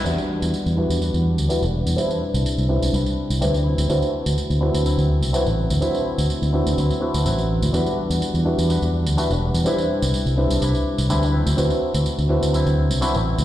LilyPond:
<<
  \new Staff \with { instrumentName = "Clav" } { \time 4/4 \key d \mixolydian \tempo 4 = 125 <g d' e' fis' b'>4. <g d' e' fis' b'>4. <d' e' fis' g' b'>8 r8 | <c' d' e' g' b'>4. <c' d' e' g' b'>4. <c' d' e' g' b'>8 r8 | <c' d' e' fis' b'>4. <c' d' e' fis' b'>4. <c' d' e' fis' b'>8 r8 | <c' d' e' fis' b'>4. <c' d' e' fis' b'>4 <c' d' e' fis' b'>4. |
<g d' e' fis' b'>4. <g d' e' fis' b'>4. <d' e' fis' g' b'>8 r8 | <c' d' e' g' b'>4. <c' d' e' g' b'>4. <c' d' e' g' b'>8 r8 | <c' d' e' fis' b'>4. <c' d' e' fis' b'>4. <c' d' e' fis' b'>8 r8 | }
  \new Staff \with { instrumentName = "Clean electric guitar" } { \time 4/4 \key d \mixolydian <g d' fis'>4. <d' fis' b'>8 <g d' fis' b'>4 <g d' fis' b'>4 | <g d' e' b'>2 <g d' e' b'>4 <g d' e' b'>8 <fis c' e' b'>8~ | <fis c' e' b'>4. <c' e' b'>8 <fis c' e' b'>4 <fis c' e' b'>4 | <fis c' e' b'>4. <c' e' b'>8 <fis c' e' b'>4 <fis c' e' b'>4 |
<g d' fis' b'>2 <g d' fis' b'>4 <g d' fis' b'>4 | <g d' e' b'>2 <g d' e' b'>4 <g d' e' b'>8 <fis c' e' b'>8~ | <fis c' e' b'>2 <fis c' e' b'>4 <fis c' e' b'>4 | }
  \new Staff \with { instrumentName = "Fingered electric bass" } { \clef bass \time 4/4 \key d \mixolydian e,16 r8 e,16 r16 e,8 e,8 e,8 d,16 r16 e,,8 e,16 | r8. c,16 r16 c,8 c,16 c,16 r8 c,16 d,8. d,16 | d,16 r8 d,16 r16 d,8 d,8 d,8 c,16 r16 a,,8 d,16 | r8. d,16 r16 d,8 d,16 d,16 r8 d,16 a,,8. d,16 |
e,16 r8 e,16 r16 e,8 e,8 e,8 d,16 r16 e,,8 e,16 | r8. c,16 r16 c,8 c,16 c,16 r8 c,16 d,8. d,16 | d,16 r8 d,16 r16 d,8 d,8 d,8 c,16 r16 a,,8 d,16 | }
  \new DrumStaff \with { instrumentName = "Drums" } \drummode { \time 4/4 tamb16 tamb8 tamb16 tamb16 tamb8 tamb16 tamb16 tamb8 tamb16 tamb16 tamb8 tamb16 | tamb16 tamb8 tamb16 tamb16 tamb8 tamb16 tamb16 tamb8 tamb16 tamb16 tamb8 tamb16 | tamb16 tamb8 tamb16 tamb16 tamb8 tamb16 tamb16 tamb8 tamb16 tamb16 tamb8 tamb16 | tamb16 tamb8 tamb16 tamb16 tamb8 tamb16 tamb16 tamb8 tamb16 tamb16 tamb8 tamb16 |
tamb16 tamb8 tamb16 tamb16 tamb8 tamb16 tamb16 tamb8 tamb16 tamb16 tamb8 tamb16 | tamb16 tamb8 tamb16 tamb16 tamb8 tamb16 tamb16 tamb8 tamb16 tamb16 tamb8 tamb16 | tamb16 tamb8 tamb16 tamb16 tamb8 tamb16 tamb16 tamb8 tamb16 tamb16 tamb8 tamb16 | }
>>